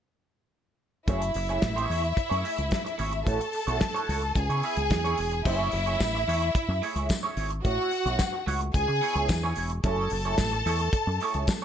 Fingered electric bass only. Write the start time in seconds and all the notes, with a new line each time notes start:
1.08 F#1
1.35 F#1
1.63 A1
1.90 E2
2.31 F#2
2.58 C#2
2.99 G#1
3.27 A1
3.67 B1
4.09 C#2
4.36 C#2
4.49 C#3
4.77 C#2
4.91 E2
5.18 E1
5.46 F#1
5.73 F#1
6.01 A1
6.28 E2
6.55 muted fingered electric bass stroke
6.68 F#2
6.95 C#2
7.37 G#1
7.65 A1
8.05 B1
8.47 C#2
8.74 C#2
8.88 C#3
9.15 C#2
9.29 E2
9.56 E1
9.84 F#1
10.11 F#1
10.39 A1
10.66 E2
10.93 muted fingered electric bass stroke
11.07 F#2
11.34 C#2